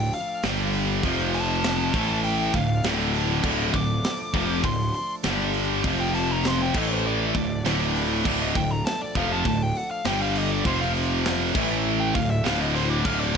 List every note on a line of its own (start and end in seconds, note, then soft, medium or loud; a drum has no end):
0.00 0.11 D1 medium
0.00 0.42 F3 medium
0.00 0.42 A3 medium
0.00 1.01 D4 medium
0.00 0.42 A4 medium
0.00 0.42 D5 medium
0.00 0.12 G5 medium
0.13 0.43 F5 medium
0.13 open hi-hat medium
0.43 1.00 G1 medium
0.43 1.03 G2 medium
0.43 1.03 D3 medium
0.43 1.03 D3 loud
0.43 1.03 G3 medium
0.43 1.03 G3 loud
0.43 1.03 G4 medium
0.43 1.04 G5 medium
0.43 snare loud
0.43 open hi-hat medium
0.73 open hi-hat medium
1.03 1.90 F1 medium
1.03 1.93 F2 medium
1.03 1.93 C3 medium
1.03 1.94 C3 loud
1.03 1.93 F3 medium
1.03 1.94 F3 loud
1.03 1.94 C4 medium
1.03 1.93 F4 medium
1.03 1.94 F5 medium
1.03 kick loud
1.03 open hi-hat medium
1.34 2.20 A5 loud
1.34 open hi-hat medium
1.64 snare loud
1.64 open hi-hat medium
1.94 2.50 A1 medium
1.94 2.53 A2 medium
1.94 2.55 A2 medium
1.94 2.54 E3 medium
1.94 2.54 E3 loud
1.94 2.54 A3 medium
1.94 2.54 A3 loud
1.94 2.54 E4 medium
1.94 2.54 E5 medium
1.94 kick loud
1.94 open hi-hat medium
2.24 2.53 G5 medium
2.24 open hi-hat medium
2.54 2.82 D1 medium
2.54 2.79 D2 medium
2.54 2.79 A2 medium
2.54 5.23 F3 medium
2.54 5.23 A3 medium
2.54 5.83 D4 medium
2.54 5.23 A4 medium
2.54 5.23 D5 medium
2.54 2.84 F5 medium
2.54 kick medium
2.54 open hi-hat medium
2.84 3.40 D1 loud
2.84 3.43 D2 medium
2.84 3.43 A2 loud
2.84 3.43 D3 loud
2.84 snare loud
2.84 open hi-hat medium
3.14 open hi-hat medium
3.43 3.72 D1 loud
3.43 3.73 D2 loud
3.43 3.73 A2 loud
3.43 3.74 D3 loud
3.43 kick loud
3.43 crash loud
3.74 4.02 D1 medium
3.74 3.98 D2 medium
3.74 3.98 A2 medium
3.74 4.61 D6 loud
3.74 kick medium
3.74 open hi-hat medium
4.04 snare loud
4.04 open hi-hat medium
4.34 4.62 F1 medium
4.34 4.63 F2 loud
4.34 4.64 C3 loud
4.34 4.64 F3 loud
4.34 kick loud
4.34 open hi-hat medium
4.64 4.92 D1 medium
4.64 4.88 D2 medium
4.64 4.89 A2 medium
4.64 4.93 C6 medium
4.64 kick medium
4.64 open hi-hat medium
4.94 5.13 C6 loud
4.94 open hi-hat medium
5.23 5.81 G1 medium
5.23 5.83 G2 medium
5.23 5.84 D3 loud
5.23 5.84 D3 medium
5.23 5.84 G3 medium
5.23 5.85 G3 medium
5.23 5.85 G4 medium
5.23 5.85 G5 medium
5.23 snare loud
5.23 open hi-hat medium
5.53 open hi-hat medium
5.84 6.70 F1 loud
5.84 6.73 F2 loud
5.84 6.74 C3 medium
5.84 6.74 F3 loud
5.84 6.74 F3 medium
5.84 6.74 C4 medium
5.84 6.74 F4 medium
5.84 6.74 F5 medium
5.84 kick loud
5.84 open hi-hat medium
6.00 6.14 G5 loud
6.14 6.29 A5 medium
6.14 open hi-hat medium
6.31 6.47 A#5 loud
6.44 6.60 C6 loud
6.44 snare loud
6.44 open hi-hat medium
6.62 6.75 G5 medium
6.73 7.31 A1 medium
6.73 7.33 A2 medium
6.73 7.34 A2 loud
6.73 7.33 E3 medium
6.73 7.34 E3 loud
6.73 7.32 A3 medium
6.73 7.34 A3 loud
6.73 7.33 E4 medium
6.73 7.33 E5 medium
6.73 kick loud
6.73 crash loud
6.77 6.92 D#5 medium
6.92 7.05 C5 medium
7.07 7.62 D5 medium
7.33 7.63 D1 medium
7.33 7.59 D2 medium
7.33 7.59 A2 medium
7.33 10.02 F3 medium
7.33 10.02 A3 medium
7.33 10.01 D4 medium
7.33 10.02 A4 medium
7.33 10.02 D5 medium
7.33 kick loud
7.33 open hi-hat medium
7.65 8.21 D1 medium
7.65 8.24 D2 medium
7.65 8.24 A2 medium
7.65 8.24 D3 medium
7.65 snare loud
7.65 open hi-hat medium
7.95 open hi-hat medium
8.25 8.53 D1 medium
8.25 8.54 D2 medium
8.25 8.54 A2 medium
8.25 8.55 D3 loud
8.25 kick loud
8.25 crash loud
8.42 8.55 D#5 medium
8.55 8.83 D1 medium
8.55 8.80 D2 medium
8.55 8.80 A2 medium
8.55 8.70 G5 loud
8.55 kick medium
8.55 open hi-hat medium
8.71 8.85 A#5 loud
8.86 9.00 A5 loud
8.86 snare loud
8.86 open hi-hat medium
9.01 9.15 D5 medium
9.15 9.43 F1 medium
9.15 9.44 F2 loud
9.15 9.45 C3 loud
9.15 9.45 F3 loud
9.15 9.30 F5 loud
9.15 kick loud
9.15 open hi-hat medium
9.32 9.46 A5 loud
9.45 9.73 D1 medium
9.45 9.70 D2 medium
9.45 9.70 A2 medium
9.45 9.61 A5 medium
9.45 kick medium
9.45 open hi-hat medium
9.62 9.77 G5 medium
9.75 9.90 F#5 loud
9.75 open hi-hat medium
9.91 10.05 F5 medium
10.05 10.61 G1 loud
10.05 10.64 G2 medium
10.05 10.64 D3 medium
10.05 10.65 G3 medium
10.05 10.65 G3 loud
10.05 10.65 D4 medium
10.05 10.64 G4 medium
10.05 10.65 G5 medium
10.05 10.21 G5 loud
10.05 snare loud
10.05 open hi-hat medium
10.22 10.36 F5 medium
10.35 10.52 D#5 loud
10.35 open hi-hat medium
10.52 10.65 D5 medium
10.65 11.51 F1 medium
10.65 11.54 F2 medium
10.65 11.55 C3 medium
10.65 11.55 C3 loud
10.65 11.54 F3 medium
10.65 11.55 F3 loud
10.65 11.55 C4 medium
10.65 11.55 F4 medium
10.65 10.80 C5 medium
10.65 11.54 F5 medium
10.65 kick loud
10.65 open hi-hat medium
10.81 10.90 F5 medium
10.95 open hi-hat medium
11.25 snare loud
11.25 open hi-hat medium
11.55 12.11 A1 medium
11.55 12.14 A2 loud
11.55 12.15 A2 medium
11.55 12.15 E3 medium
11.55 12.15 E3 loud
11.55 13.37 A3 medium
11.55 12.15 A3 loud
11.55 12.15 E4 medium
11.55 12.15 E5 medium
11.55 kick loud
11.55 crash loud
12.00 12.15 G5 medium
12.15 12.43 D1 medium
12.15 12.39 D2 medium
12.15 12.39 A2 medium
12.15 13.37 F3 medium
12.15 13.37 D4 medium
12.15 13.37 A4 medium
12.15 13.37 D5 medium
12.15 12.30 F5 medium
12.15 kick medium
12.15 open hi-hat medium
12.30 12.45 E5 loud
12.44 13.02 D1 loud
12.44 13.04 D2 medium
12.44 13.04 A2 medium
12.44 13.04 D3 loud
12.44 12.60 F5 loud
12.44 snare loud
12.44 open hi-hat medium
12.60 12.75 D#5 medium
12.75 12.90 C5 loud
12.75 open hi-hat medium
12.90 13.05 D5 medium
13.05 13.33 D1 loud
13.05 13.34 D2 medium
13.05 13.34 A2 loud
13.05 13.35 D3 loud
13.05 13.20 F5 loud
13.05 kick loud
13.05 crash loud
13.20 13.35 D5 medium